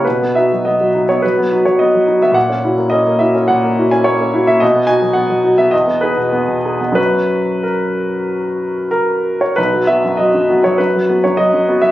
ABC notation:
X:1
M:4/4
L:1/16
Q:1/4=102
K:B
V:1 name="Grand piano"
B2 e2 d3 c B3 c d3 e | f4 d2 e2 f3 g c3 e | d2 g2 f3 e d2 B6 | B4 A8 A3 c |
B2 e2 d3 c B3 c d3 e |]
V:2 name="Grand piano"
B,, B, [DF] F, B, F, [DF] B, F, B, [DF] F, B, F, [DF] B, | A,, C [EF] A, C A, [EF] C A,, A, [EF] C A, C [EF] A, | B,, B, [DF] F, B, F, [DF] B, E,, B, [DG] B,, B, B,, [DG] B, | [F,,F,CF]16 |
B,,, F, [B,F] F,, F, F,, [B,F] F, F,, F, [B,F] F,, F, F,, [B,F] F, |]